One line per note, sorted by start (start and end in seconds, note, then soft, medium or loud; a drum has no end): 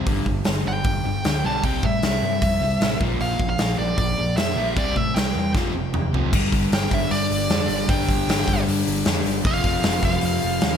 0.06 0.23 G1 medium
0.06 0.25 G2 medium
0.06 0.26 D3 medium
0.06 0.26 G3 medium
0.06 kick loud
0.06 open hi-hat soft
0.26 0.43 G1 medium
0.26 0.44 G2 medium
0.26 0.44 D3 medium
0.26 kick medium
0.44 0.63 G1 medium
0.44 0.64 G2 medium
0.44 0.64 D3 medium
0.44 snare loud
0.44 open hi-hat soft
0.66 0.83 G1 medium
0.66 0.83 G2 medium
0.66 0.83 D3 medium
0.66 1.46 G5 medium
0.84 1.02 G1 medium
0.84 1.03 G2 medium
0.84 1.03 D3 medium
0.84 kick loud
0.84 open hi-hat medium
1.05 1.22 G1 medium
1.05 1.23 G2 medium
1.05 1.23 D3 medium
1.24 1.42 D2 medium
1.24 1.43 G2 medium
1.24 1.43 D3 medium
1.24 snare loud
1.24 open hi-hat medium
1.44 1.61 B1 medium
1.44 1.63 G2 medium
1.44 1.63 D3 medium
1.44 1.63 G3 loud
1.44 1.63 A5 medium
1.63 1.80 C2 medium
1.63 1.82 C3 medium
1.63 1.83 G3 medium
1.63 1.83 C4 loud
1.63 1.84 G5 loud
1.63 kick loud
1.63 open hi-hat soft
1.83 2.00 A2 medium
1.83 2.01 C3 medium
1.83 2.02 G3 medium
1.83 2.97 E5 medium
1.83 kick medium
2.02 2.20 C2 medium
2.02 2.21 C3 medium
2.02 2.22 G3 medium
2.02 snare loud
2.02 open hi-hat medium
2.22 2.39 G2 medium
2.22 2.41 C3 medium
2.22 2.41 G3 medium
2.42 2.59 F2 medium
2.42 2.60 C3 medium
2.42 2.60 G3 medium
2.42 kick loud
2.42 open hi-hat medium
2.61 2.78 C2 medium
2.61 2.80 C3 medium
2.61 2.80 G3 medium
2.80 2.98 A1 medium
2.80 2.99 C3 medium
2.80 3.00 G3 medium
2.80 snare loud
2.80 open hi-hat soft
3.00 3.17 A#1 medium
3.00 3.19 A#2 medium
3.00 3.20 F3 medium
3.00 3.20 A#3 medium
3.00 kick loud
3.19 3.37 A#1 medium
3.19 3.39 A#2 medium
3.19 3.39 F3 medium
3.19 3.40 A#3 loud
3.19 3.48 F5 medium
3.19 open hi-hat soft
3.39 3.56 A#1 medium
3.39 3.58 A#2 medium
3.39 3.58 F3 medium
3.39 kick medium
3.50 3.78 F5 medium
3.58 3.77 A#1 medium
3.58 3.77 A#2 medium
3.58 3.77 F3 medium
3.58 snare loud
3.58 open hi-hat soft
3.78 3.96 A#1 medium
3.78 3.96 A#2 medium
3.78 3.97 F3 medium
3.78 3.97 D5 medium
3.98 4.15 A#1 medium
3.98 4.16 A#2 medium
3.98 4.16 F3 medium
3.98 4.37 D5 medium
3.98 kick loud
3.98 open hi-hat medium
4.17 4.35 A#1 medium
4.17 4.35 A#2 medium
4.17 4.36 F3 medium
4.36 4.54 F2 medium
4.36 4.55 A#2 medium
4.36 4.56 F3 medium
4.36 4.77 E5 medium
4.36 snare loud
4.36 open hi-hat soft
4.56 4.77 A#1 medium
4.56 4.75 A#2 medium
4.56 4.75 F3 medium
4.56 4.76 A#3 medium
4.76 4.94 C2 medium
4.76 4.95 C3 medium
4.76 4.95 G3 medium
4.76 4.95 C4 loud
4.76 4.97 D5 medium
4.76 kick loud
4.76 open hi-hat soft
4.96 5.13 A2 medium
4.96 5.14 C3 medium
4.96 5.14 G3 medium
4.96 5.17 E5 medium
4.96 kick medium
5.15 5.33 C2 medium
5.15 5.33 C3 medium
5.15 5.34 G3 medium
5.15 5.52 G5 medium
5.15 snare loud
5.15 open hi-hat medium
5.35 5.52 E2 medium
5.35 5.53 C3 medium
5.35 5.53 G3 medium
5.54 5.72 F1 medium
5.54 5.74 F2 medium
5.54 5.74 C3 medium
5.54 5.74 F3 medium
5.54 kick loud
5.54 snare medium
5.74 5.91 F1 medium
5.74 5.92 F2 medium
5.74 5.93 C3 medium
5.94 6.11 F1 medium
5.94 6.12 F2 medium
5.94 6.12 C3 medium
5.94 mid tom medium
6.13 6.30 C2 medium
6.13 6.31 F2 medium
6.13 6.32 C3 medium
6.13 6.33 F3 medium
6.13 floor tom medium
6.32 6.48 G1 medium
6.32 6.93 G2 medium
6.32 6.91 D3 medium
6.32 6.89 G3 loud
6.32 kick loud
6.32 crash loud
6.52 6.67 G1 medium
6.52 kick medium
6.52 open hi-hat medium
6.72 6.87 G1 medium
6.72 6.94 G5 loud
6.72 snare loud
6.72 open hi-hat medium
6.89 7.06 G1 medium
6.89 7.87 G2 medium
6.89 7.88 D3 medium
6.89 7.87 G3 medium
6.89 kick medium
6.89 open hi-hat medium
6.94 7.12 E5 medium
7.11 7.26 G2 medium
7.11 7.91 D5 loud
7.11 open hi-hat medium
7.31 7.45 G1 medium
7.31 open hi-hat medium
7.50 7.65 F2 medium
7.50 snare loud
7.50 open hi-hat medium
7.69 7.84 G1 medium
7.69 open hi-hat medium
7.88 8.04 G1 loud
7.88 8.46 G2 medium
7.88 8.47 D3 loud
7.88 8.45 G3 loud
7.88 8.63 G5 loud
7.88 kick loud
7.88 open hi-hat medium
8.09 8.23 G1 medium
8.09 kick medium
8.09 open hi-hat medium
8.27 8.42 G1 loud
8.27 snare loud
8.27 open hi-hat medium
8.46 8.62 G1 medium
8.46 9.44 D3 medium
8.46 9.43 G3 medium
8.46 kick medium
8.46 open hi-hat medium
8.50 9.43 G2 medium
8.68 8.82 G2 medium
8.68 open hi-hat loud
8.87 9.01 G1 medium
8.87 open hi-hat medium
9.05 9.21 F2 medium
9.05 snare loud
9.05 open hi-hat medium
9.25 9.40 G1 medium
9.25 open hi-hat medium
9.43 9.60 F1 loud
9.43 10.01 F2 loud
9.43 10.02 C3 loud
9.43 10.02 F3 loud
9.43 10.04 F5 medium
9.43 kick loud
9.43 open hi-hat medium
9.64 9.79 F1 medium
9.64 kick medium
9.64 open hi-hat medium
9.83 9.99 F1 medium
9.83 snare loud
9.83 open hi-hat medium
10.03 10.18 F1 loud
10.03 10.77 C3 medium
10.03 10.77 F3 loud
10.03 10.77 F5 medium
10.03 kick medium
10.03 open hi-hat medium
10.07 10.77 F2 medium
10.21 10.38 F2 medium
10.21 open hi-hat medium
10.41 10.57 F1 medium
10.41 open hi-hat medium
10.61 10.77 D#2 medium
10.61 snare loud
10.61 open hi-hat medium